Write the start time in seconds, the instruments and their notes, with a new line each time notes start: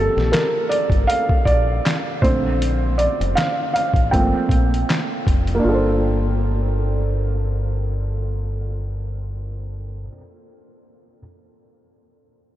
Already playing: felt piano F3 G3 A#3 C4 A4
0.17 fingered electric bass A#1, snare
0.32 felt piano A#4, snare, clap, closed hi-hat
0.69 felt piano D5, closed hi-hat
0.90 fingered electric bass G1, kick, closed hi-hat
1.07 felt piano F5, closed hi-hat
1.29 muted fingered electric bass stroke, kick
1.45 fingered electric bass A#1, felt piano D5, kick, closed hi-hat
1.86 snare, clap, closed hi-hat
2.22 fingered electric bass A#1, felt piano D3 A3 C4 C5, kick, closed hi-hat
2.62 closed hi-hat
2.98 felt piano D5, closed hi-hat
3.20 fingered electric bass F1, closed hi-hat
3.35 felt piano F5, snare, clap, closed hi-hat
3.74 felt piano F5, closed hi-hat
3.94 fingered electric bass A1, kick, closed hi-hat
4.11 fingered electric bass G1, felt piano F3 A3 A#3 C4 G5, kick, closed hi-hat
4.49 fingered electric bass A#1, kick, closed hi-hat
4.74 closed hi-hat
4.90 snare, clap, closed hi-hat
5.27 fingered electric bass F1, kick, closed hi-hat
5.47 closed hi-hat
5.55 felt piano A#3
5.59 felt piano D4
5.64 fingered electric bass G1, felt piano F4
5.69 felt piano A4
5.74 felt piano C5